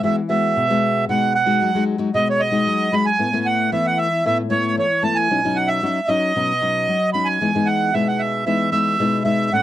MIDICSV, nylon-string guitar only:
0, 0, Header, 1, 2, 480
1, 0, Start_track
1, 0, Key_signature, 4, "major"
1, 0, Tempo, 527241
1, 991, Time_signature, 4, 2, 24, 8
1, 8763, End_track
2, 0, Start_track
2, 0, Title_t, "Nylon-string guitar"
2, 0, Program_c, 0, 24
2, 28, Note_on_c, 0, 52, 64
2, 31, Note_on_c, 0, 56, 53
2, 37, Note_on_c, 0, 66, 67
2, 38, Note_on_c, 0, 59, 55
2, 172, Note_off_c, 0, 56, 0
2, 173, Note_off_c, 0, 59, 0
2, 175, Note_off_c, 0, 66, 0
2, 263, Note_on_c, 0, 56, 48
2, 266, Note_on_c, 0, 59, 54
2, 270, Note_on_c, 0, 66, 61
2, 487, Note_off_c, 0, 52, 0
2, 515, Note_on_c, 0, 47, 66
2, 589, Note_off_c, 0, 56, 0
2, 591, Note_off_c, 0, 59, 0
2, 591, Note_off_c, 0, 66, 0
2, 638, Note_on_c, 0, 56, 60
2, 642, Note_on_c, 0, 59, 62
2, 645, Note_on_c, 0, 66, 68
2, 957, Note_off_c, 0, 56, 0
2, 957, Note_off_c, 0, 59, 0
2, 960, Note_off_c, 0, 66, 0
2, 969, Note_off_c, 0, 47, 0
2, 994, Note_on_c, 0, 47, 60
2, 994, Note_on_c, 0, 56, 51
2, 997, Note_on_c, 0, 63, 52
2, 1001, Note_on_c, 0, 66, 53
2, 1217, Note_off_c, 0, 56, 0
2, 1219, Note_off_c, 0, 63, 0
2, 1221, Note_off_c, 0, 66, 0
2, 1330, Note_on_c, 0, 56, 62
2, 1334, Note_on_c, 0, 63, 54
2, 1335, Note_on_c, 0, 66, 65
2, 1449, Note_off_c, 0, 47, 0
2, 1475, Note_on_c, 0, 54, 68
2, 1543, Note_off_c, 0, 56, 0
2, 1544, Note_off_c, 0, 63, 0
2, 1545, Note_off_c, 0, 66, 0
2, 1593, Note_on_c, 0, 56, 60
2, 1600, Note_on_c, 0, 63, 57
2, 1605, Note_on_c, 0, 66, 66
2, 1794, Note_off_c, 0, 56, 0
2, 1797, Note_off_c, 0, 63, 0
2, 1800, Note_off_c, 0, 66, 0
2, 1805, Note_on_c, 0, 56, 60
2, 1812, Note_on_c, 0, 63, 63
2, 1814, Note_on_c, 0, 66, 64
2, 1901, Note_off_c, 0, 56, 0
2, 1902, Note_off_c, 0, 63, 0
2, 1905, Note_off_c, 0, 66, 0
2, 1929, Note_off_c, 0, 54, 0
2, 1949, Note_on_c, 0, 47, 72
2, 1951, Note_on_c, 0, 56, 49
2, 1958, Note_on_c, 0, 63, 45
2, 1959, Note_on_c, 0, 66, 51
2, 2273, Note_off_c, 0, 56, 0
2, 2274, Note_off_c, 0, 63, 0
2, 2277, Note_off_c, 0, 66, 0
2, 2289, Note_on_c, 0, 56, 54
2, 2294, Note_on_c, 0, 63, 54
2, 2297, Note_on_c, 0, 66, 62
2, 2407, Note_off_c, 0, 47, 0
2, 2429, Note_on_c, 0, 54, 66
2, 2622, Note_off_c, 0, 56, 0
2, 2624, Note_off_c, 0, 63, 0
2, 2626, Note_off_c, 0, 66, 0
2, 2663, Note_on_c, 0, 56, 64
2, 2667, Note_on_c, 0, 63, 61
2, 2670, Note_on_c, 0, 66, 59
2, 2809, Note_off_c, 0, 56, 0
2, 2810, Note_off_c, 0, 63, 0
2, 2812, Note_off_c, 0, 66, 0
2, 2886, Note_off_c, 0, 54, 0
2, 2903, Note_on_c, 0, 45, 62
2, 2904, Note_on_c, 0, 57, 50
2, 2908, Note_on_c, 0, 59, 58
2, 2912, Note_on_c, 0, 64, 58
2, 2979, Note_off_c, 0, 57, 0
2, 2982, Note_off_c, 0, 59, 0
2, 2983, Note_off_c, 0, 64, 0
2, 3034, Note_on_c, 0, 57, 69
2, 3039, Note_on_c, 0, 59, 61
2, 3040, Note_on_c, 0, 64, 78
2, 3355, Note_off_c, 0, 57, 0
2, 3355, Note_off_c, 0, 59, 0
2, 3358, Note_off_c, 0, 64, 0
2, 3364, Note_off_c, 0, 45, 0
2, 3387, Note_on_c, 0, 52, 71
2, 3389, Note_on_c, 0, 57, 55
2, 3391, Note_on_c, 0, 59, 55
2, 3397, Note_on_c, 0, 64, 59
2, 3698, Note_off_c, 0, 57, 0
2, 3701, Note_off_c, 0, 59, 0
2, 3702, Note_off_c, 0, 64, 0
2, 3846, Note_off_c, 0, 52, 0
2, 3866, Note_on_c, 0, 45, 66
2, 3872, Note_on_c, 0, 59, 53
2, 3873, Note_on_c, 0, 57, 49
2, 3879, Note_on_c, 0, 64, 62
2, 4012, Note_off_c, 0, 57, 0
2, 4013, Note_off_c, 0, 59, 0
2, 4017, Note_off_c, 0, 64, 0
2, 4096, Note_on_c, 0, 57, 67
2, 4100, Note_on_c, 0, 59, 54
2, 4106, Note_on_c, 0, 64, 68
2, 4326, Note_off_c, 0, 45, 0
2, 4345, Note_on_c, 0, 52, 66
2, 4413, Note_off_c, 0, 57, 0
2, 4415, Note_off_c, 0, 59, 0
2, 4417, Note_off_c, 0, 64, 0
2, 4576, Note_on_c, 0, 57, 57
2, 4580, Note_on_c, 0, 59, 57
2, 4585, Note_on_c, 0, 64, 58
2, 4804, Note_off_c, 0, 52, 0
2, 4805, Note_off_c, 0, 57, 0
2, 4807, Note_off_c, 0, 59, 0
2, 4808, Note_off_c, 0, 64, 0
2, 4827, Note_on_c, 0, 47, 59
2, 4832, Note_on_c, 0, 54, 50
2, 4833, Note_on_c, 0, 61, 54
2, 4838, Note_on_c, 0, 63, 62
2, 4912, Note_off_c, 0, 54, 0
2, 4914, Note_off_c, 0, 61, 0
2, 4916, Note_off_c, 0, 63, 0
2, 4957, Note_on_c, 0, 54, 62
2, 4962, Note_on_c, 0, 61, 60
2, 4967, Note_on_c, 0, 63, 76
2, 5276, Note_off_c, 0, 54, 0
2, 5278, Note_off_c, 0, 61, 0
2, 5279, Note_off_c, 0, 63, 0
2, 5286, Note_off_c, 0, 47, 0
2, 5307, Note_on_c, 0, 54, 73
2, 5309, Note_off_c, 0, 54, 0
2, 5309, Note_on_c, 0, 54, 56
2, 5312, Note_on_c, 0, 61, 55
2, 5317, Note_on_c, 0, 63, 61
2, 5451, Note_off_c, 0, 54, 0
2, 5453, Note_off_c, 0, 61, 0
2, 5455, Note_off_c, 0, 63, 0
2, 5538, Note_on_c, 0, 54, 61
2, 5542, Note_on_c, 0, 61, 55
2, 5548, Note_on_c, 0, 63, 70
2, 5747, Note_off_c, 0, 54, 0
2, 5749, Note_off_c, 0, 61, 0
2, 5750, Note_off_c, 0, 63, 0
2, 5788, Note_on_c, 0, 47, 62
2, 5791, Note_on_c, 0, 54, 58
2, 5796, Note_on_c, 0, 61, 59
2, 5797, Note_on_c, 0, 63, 53
2, 5932, Note_off_c, 0, 54, 0
2, 5932, Note_off_c, 0, 61, 0
2, 5935, Note_off_c, 0, 63, 0
2, 6019, Note_on_c, 0, 54, 52
2, 6023, Note_on_c, 0, 61, 57
2, 6028, Note_on_c, 0, 63, 59
2, 6247, Note_off_c, 0, 47, 0
2, 6259, Note_off_c, 0, 54, 0
2, 6269, Note_on_c, 0, 54, 59
2, 6337, Note_off_c, 0, 61, 0
2, 6338, Note_off_c, 0, 63, 0
2, 6491, Note_off_c, 0, 54, 0
2, 6502, Note_on_c, 0, 54, 53
2, 6505, Note_on_c, 0, 61, 51
2, 6509, Note_on_c, 0, 63, 65
2, 6727, Note_off_c, 0, 54, 0
2, 6729, Note_off_c, 0, 61, 0
2, 6731, Note_off_c, 0, 63, 0
2, 6748, Note_on_c, 0, 52, 62
2, 6750, Note_on_c, 0, 56, 50
2, 6752, Note_on_c, 0, 59, 49
2, 6757, Note_on_c, 0, 63, 60
2, 6822, Note_off_c, 0, 56, 0
2, 6824, Note_off_c, 0, 59, 0
2, 6826, Note_off_c, 0, 63, 0
2, 6873, Note_on_c, 0, 56, 64
2, 6880, Note_on_c, 0, 59, 60
2, 6881, Note_on_c, 0, 63, 65
2, 7194, Note_off_c, 0, 56, 0
2, 7197, Note_off_c, 0, 59, 0
2, 7197, Note_off_c, 0, 63, 0
2, 7206, Note_off_c, 0, 52, 0
2, 7231, Note_on_c, 0, 47, 64
2, 7233, Note_on_c, 0, 56, 57
2, 7238, Note_on_c, 0, 59, 57
2, 7238, Note_on_c, 0, 63, 56
2, 7672, Note_off_c, 0, 56, 0
2, 7673, Note_off_c, 0, 59, 0
2, 7676, Note_off_c, 0, 63, 0
2, 7688, Note_off_c, 0, 47, 0
2, 7706, Note_on_c, 0, 52, 68
2, 7709, Note_on_c, 0, 56, 48
2, 7711, Note_on_c, 0, 59, 57
2, 7715, Note_on_c, 0, 63, 55
2, 7910, Note_off_c, 0, 56, 0
2, 7912, Note_off_c, 0, 59, 0
2, 7914, Note_off_c, 0, 63, 0
2, 7938, Note_on_c, 0, 56, 60
2, 7944, Note_on_c, 0, 59, 53
2, 7947, Note_on_c, 0, 63, 64
2, 8146, Note_off_c, 0, 56, 0
2, 8148, Note_off_c, 0, 59, 0
2, 8149, Note_off_c, 0, 63, 0
2, 8164, Note_off_c, 0, 52, 0
2, 8190, Note_on_c, 0, 47, 65
2, 8192, Note_on_c, 0, 56, 62
2, 8194, Note_on_c, 0, 59, 56
2, 8198, Note_on_c, 0, 63, 60
2, 8392, Note_off_c, 0, 56, 0
2, 8393, Note_off_c, 0, 59, 0
2, 8396, Note_off_c, 0, 63, 0
2, 8419, Note_on_c, 0, 56, 66
2, 8425, Note_on_c, 0, 59, 60
2, 8428, Note_on_c, 0, 63, 63
2, 8646, Note_off_c, 0, 47, 0
2, 8646, Note_off_c, 0, 56, 0
2, 8647, Note_off_c, 0, 59, 0
2, 8650, Note_off_c, 0, 63, 0
2, 8673, Note_on_c, 0, 45, 70
2, 8677, Note_on_c, 0, 61, 50
2, 8678, Note_on_c, 0, 57, 47
2, 8679, Note_on_c, 0, 64, 53
2, 8763, Note_off_c, 0, 45, 0
2, 8763, Note_off_c, 0, 57, 0
2, 8763, Note_off_c, 0, 61, 0
2, 8763, Note_off_c, 0, 64, 0
2, 8763, End_track
0, 0, End_of_file